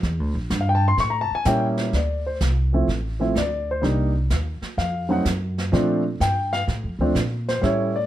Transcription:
0.03 E2, brush sweep, kick, snare
0.20 D2
0.35 A#1
0.50 G2, kick, snare, hi-hat pedal
0.61 F5
0.69 G5
0.75 A5
0.88 C6
0.97 A2 C#6, brush sweep, kick, snare
1.10 A#5
1.21 A5
1.31 muted upright bass stroke
1.35 G#5
1.45 A#2 G3 A#3 C#4 E4 G5, kick, snare, hi-hat pedal
1.78 snare
1.93 D2 D5, brush sweep, kick, snare
2.27 C5
2.40 C2, kick, snare, hi-hat pedal
2.73 F3 A3 C4 E4
2.88 A1, brush sweep, kick, snare
3.19 F3 A3 C4 E4
3.35 D2 D5, kick, snare, hi-hat pedal
3.71 C5
3.82 C2 G3 A#3 D4 D#4, brush sweep, kick, snare
4.30 D#2, kick, snare, hi-hat pedal
4.62 muted upright bass stroke, snare
4.77 F2 F5, brush sweep, kick, snare
5.09 F#3 A3 C4 D#4 F#5
5.25 F#2, kick, snare, hi-hat pedal
5.58 snare
5.72 A#2 F3 A3 C4 D4, brush sweep, kick, snare
6.20 G2 G5, kick, snare, hi-hat pedal
6.53 F5, snare
6.68 A2, brush sweep, kick, snare
6.84 F2
6.99 D2 F3 A3 C4 D4
7.15 A#2, kick, snare, hi-hat pedal
7.49 C5, snare
7.62 A2 G3 A3 C#4 E4 C#5, brush sweep, kick, snare
7.96 D5

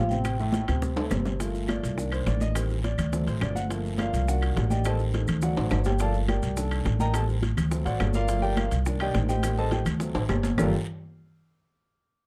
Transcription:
Already playing: A1
0.09 C3 C4 G5, high conga, short guiro, maracas
0.25 high bongo, high conga, high timbale, long guiro, claves, maracas
0.39 A2 A3, high bongo, high conga, maracas
0.52 high bongo, high conga, high timbale, low timbale, short guiro, maracas
0.68 D2 C3 C4, high bongo, high timbale, short guiro, claves, maracas
0.82 low bongo, high conga, long guiro, maracas
0.96 A3 A4, low bongo, high conga, high timbale, maracas
1.11 G1 C3 C4, low bongo, high conga, low timbale, short guiro, claves, maracas
1.25 low bongo, high conga, low timbale, short guiro, maracas
1.40 A3 A#3 F4, high bongo, high conga, high timbale, long guiro, maracas
1.54 high bongo, high conga, maracas
1.68 D5, high bongo, high conga, high timbale, short guiro, claves, maracas
1.83 C2, high timbale, short guiro, maracas
1.96 D#3 A#3 D4, high bongo, high conga, long guiro, maracas
2.12 C5, high bongo, high conga, high timbale, claves, maracas
2.26 A1 D5, high bongo, low bongo, high conga, high timbale, short guiro, maracas
2.40 D#5, high bongo, high conga, short guiro, maracas
2.55 D#3 G3 C4, high bongo, high conga, high timbale, long guiro, claves, maracas
2.69 high bongo, high conga, maracas
2.84 D5, high bongo, high conga, high timbale, short guiro, maracas
2.98 D2, high conga, low conga, high timbale, short guiro, claves, maracas
3.12 F#3 A3 C4, high bongo, high conga, low conga, long guiro, maracas
3.26 A1 C5, high bongo, high conga, high timbale, maracas
3.41 G1 D5, high bongo, low bongo, high conga, high timbale, short guiro, claves, maracas
3.55 F#5, high bongo, high conga, short guiro, maracas
3.69 F3 A3 A#3, high bongo, high conga, high timbale, long guiro, maracas
3.84 high bongo, high conga, maracas
3.98 F4 A#4 D5 F5, high bongo, high conga, high timbale, short guiro, claves, maracas
4.13 C2, high timbale, short guiro, maracas
4.27 D#3 A#3 D4 F#4 F#5, high bongo, high conga, long guiro, maracas
4.42 high bongo, high conga, high timbale, claves, maracas
4.56 A1, high bongo, low bongo, high conga, high timbale, low timbale, short guiro, maracas
4.70 G4 D5 D#5 G5, high bongo, high conga, short guiro, maracas
4.84 D#3 G3 C4 A4 C5 D#5 A5, high bongo, high conga, high timbale, long guiro, claves, maracas
4.99 high bongo, maracas
5.13 D#4 A4 C5 D#5, high bongo, high conga, high timbale, short guiro, maracas
5.28 D2, high conga, low conga, high timbale, short guiro, claves, maracas
5.42 F#3 A3 C4 F#4 C5 D5 F#5, high bongo, high conga, low conga, long guiro, maracas
5.56 A1, high bongo, high conga, high timbale, maracas
5.70 G1, high bongo, low bongo, high conga, high timbale, short guiro, claves, maracas
5.84 G4 G5, high bongo, high conga, low timbale, short guiro, maracas
5.99 F3 A3 A#3 A4 D5 F5 A5, high bongo, high conga, high timbale, long guiro, maracas
6.14 high bongo, high conga, maracas
6.28 G4 A#4 D5 G5, high bongo, high conga, high timbale, short guiro, claves, maracas
6.43 C2, high timbale, short guiro, maracas
6.57 D#3 A#3 D4 A4 A5, high bongo, high conga, long guiro, maracas
6.71 high bongo, high conga, high timbale, claves, maracas
6.85 A1, high bongo, low bongo, high conga, high timbale, short guiro, maracas
6.99 A#4 D#5 G5 A#5, high bongo, high conga, short guiro, maracas
7.13 D#3 G3 C4 A4 C5 D#5 A5, high bongo, high conga, high timbale, long guiro, claves, maracas
7.28 high bongo, maracas
7.42 high bongo, high conga, high timbale, short guiro, maracas
7.57 D2, high conga, low conga, high timbale, short guiro, claves, maracas
7.70 F#3 A3 C4, high bongo, high conga, long guiro, maracas
7.85 A1 F#4 C5 D5 F#5, high bongo, high conga, high timbale, maracas
7.99 G1 D4 F#4 A4, high bongo, low bongo, high conga, high timbale, low timbale, short guiro, claves, maracas
8.13 F4 A#4 D5 F5, high bongo, high conga, short guiro, maracas
8.28 F3 A3 A#3, high bongo, high conga, high timbale, long guiro, maracas
8.42 G4 A#4 D5 G5, high bongo, maracas
8.57 F4 A#4 D5 F5, high bongo, high conga, high timbale, short guiro, claves, maracas
8.71 C2, high timbale, short guiro, maracas
8.85 D#3 A#3 D4, high bongo, high conga, long guiro, maracas
9.00 G4 D5 D#5 G5, high bongo, high conga, high timbale, claves, maracas
9.14 A1 D#4 C5 D#5, high bongo, low bongo, high conga, high timbale, short guiro, maracas
9.29 G4 C5 D#5 G5, high bongo, high conga, short guiro, maracas
9.43 D#3 G3 C4, high bongo, high conga, high timbale, long guiro, claves, maracas
9.57 A4 C5 D#5 A5, high bongo, high conga, maracas
9.71 G4 C5 D#5 G5, high bongo, high conga, high timbale, short guiro, maracas
9.86 D2, high conga, low conga, high timbale, short guiro, claves, maracas
10.00 F#3 A3 C4, high bongo, high conga, long guiro, maracas
10.15 A1, high bongo, high conga, high timbale, maracas
10.29 G1, high bongo, low bongo, low timbale, short guiro, claves, maracas
10.43 high bongo, low timbale, short guiro, maracas
10.58 G1 G3 D4 F4 G4 A4 A#4, low bongo, low conga, low timbale, long guiro, claves, maracas

